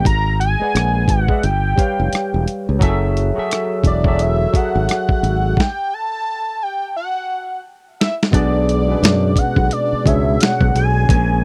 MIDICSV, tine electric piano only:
0, 0, Header, 1, 2, 480
1, 0, Start_track
1, 0, Tempo, 689655
1, 36, Time_signature, 4, 2, 24, 8
1, 7963, End_track
2, 0, Start_track
2, 0, Title_t, "Tine electric piano"
2, 0, Program_c, 0, 4
2, 0, Control_c, 0, 64, 127
2, 44, Control_c, 0, 64, 0
2, 158, Control_c, 0, 64, 127
2, 412, Note_on_c, 0, 56, 64
2, 419, Note_on_c, 0, 68, 59
2, 428, Note_on_c, 0, 71, 58
2, 433, Note_on_c, 0, 74, 53
2, 439, Note_on_c, 0, 78, 62
2, 856, Note_off_c, 0, 56, 0
2, 859, Note_off_c, 0, 68, 0
2, 864, Note_off_c, 0, 71, 0
2, 867, Note_off_c, 0, 74, 0
2, 870, Note_off_c, 0, 78, 0
2, 892, Note_on_c, 0, 56, 62
2, 898, Note_on_c, 0, 68, 58
2, 904, Note_on_c, 0, 71, 58
2, 911, Note_on_c, 0, 74, 57
2, 918, Note_on_c, 0, 76, 68
2, 990, Note_off_c, 0, 56, 0
2, 993, Note_off_c, 0, 68, 0
2, 996, Note_off_c, 0, 71, 0
2, 1000, Note_off_c, 0, 74, 0
2, 1003, Note_off_c, 0, 76, 0
2, 1005, Control_c, 0, 64, 0
2, 1136, Control_c, 0, 64, 127
2, 1222, Note_on_c, 0, 55, 62
2, 1228, Note_on_c, 0, 67, 61
2, 1236, Note_on_c, 0, 71, 61
2, 1243, Note_on_c, 0, 73, 63
2, 1249, Note_on_c, 0, 77, 69
2, 1910, Note_off_c, 0, 55, 0
2, 1913, Note_off_c, 0, 67, 0
2, 1917, Note_off_c, 0, 71, 0
2, 1920, Note_off_c, 0, 73, 0
2, 1923, Note_off_c, 0, 77, 0
2, 1941, Note_on_c, 0, 54, 108
2, 1949, Note_on_c, 0, 66, 91
2, 1957, Note_on_c, 0, 68, 89
2, 1963, Note_on_c, 0, 69, 87
2, 1964, Control_c, 0, 64, 0
2, 1971, Note_on_c, 0, 76, 113
2, 2082, Control_c, 0, 64, 127
2, 2305, Note_off_c, 0, 54, 0
2, 2309, Note_off_c, 0, 66, 0
2, 2313, Note_off_c, 0, 68, 0
2, 2316, Note_off_c, 0, 69, 0
2, 2320, Note_off_c, 0, 76, 0
2, 2331, Note_on_c, 0, 54, 68
2, 2338, Note_on_c, 0, 66, 64
2, 2345, Note_on_c, 0, 68, 66
2, 2354, Note_on_c, 0, 69, 65
2, 2361, Note_on_c, 0, 76, 81
2, 2775, Note_off_c, 0, 54, 0
2, 2779, Note_off_c, 0, 66, 0
2, 2783, Note_off_c, 0, 68, 0
2, 2787, Note_off_c, 0, 69, 0
2, 2790, Note_off_c, 0, 76, 0
2, 2812, Note_on_c, 0, 54, 64
2, 2819, Note_on_c, 0, 66, 61
2, 2827, Note_on_c, 0, 68, 59
2, 2833, Note_on_c, 0, 69, 59
2, 2841, Note_on_c, 0, 76, 75
2, 3131, Note_off_c, 0, 54, 0
2, 3134, Note_off_c, 0, 66, 0
2, 3138, Note_off_c, 0, 68, 0
2, 3141, Note_off_c, 0, 69, 0
2, 3145, Note_off_c, 0, 76, 0
2, 3145, Note_on_c, 0, 54, 63
2, 3152, Note_on_c, 0, 66, 57
2, 3159, Note_on_c, 0, 68, 56
2, 3167, Note_on_c, 0, 69, 57
2, 3173, Note_on_c, 0, 76, 70
2, 3870, Note_off_c, 0, 54, 0
2, 3874, Note_off_c, 0, 66, 0
2, 3877, Note_off_c, 0, 68, 0
2, 3881, Note_off_c, 0, 69, 0
2, 3884, Note_off_c, 0, 76, 0
2, 3886, Control_c, 0, 64, 0
2, 5783, Note_on_c, 0, 47, 85
2, 5791, Note_on_c, 0, 59, 85
2, 5798, Note_on_c, 0, 62, 82
2, 5804, Note_on_c, 0, 68, 78
2, 5810, Note_on_c, 0, 74, 101
2, 5915, Control_c, 0, 64, 127
2, 6146, Note_off_c, 0, 47, 0
2, 6150, Note_off_c, 0, 59, 0
2, 6153, Note_off_c, 0, 62, 0
2, 6156, Note_off_c, 0, 68, 0
2, 6159, Note_off_c, 0, 74, 0
2, 6175, Note_on_c, 0, 47, 68
2, 6183, Note_on_c, 0, 59, 58
2, 6189, Note_on_c, 0, 61, 47
2, 6196, Note_on_c, 0, 68, 60
2, 6203, Note_on_c, 0, 71, 77
2, 6221, Note_off_c, 0, 61, 0
2, 6234, Note_on_c, 0, 62, 58
2, 6946, Note_off_c, 0, 47, 0
2, 6950, Note_off_c, 0, 59, 0
2, 6956, Note_off_c, 0, 68, 0
2, 6960, Note_off_c, 0, 71, 0
2, 6975, Note_off_c, 0, 62, 0
2, 6989, Note_on_c, 0, 47, 67
2, 6997, Note_on_c, 0, 59, 59
2, 7004, Note_on_c, 0, 62, 61
2, 7011, Note_on_c, 0, 68, 61
2, 7018, Note_on_c, 0, 73, 76
2, 7712, Note_off_c, 0, 47, 0
2, 7716, Note_off_c, 0, 59, 0
2, 7720, Note_off_c, 0, 62, 0
2, 7723, Control_c, 0, 64, 0
2, 7724, Note_off_c, 0, 68, 0
2, 7727, Note_off_c, 0, 73, 0
2, 7849, Control_c, 0, 64, 127
2, 7963, End_track
0, 0, End_of_file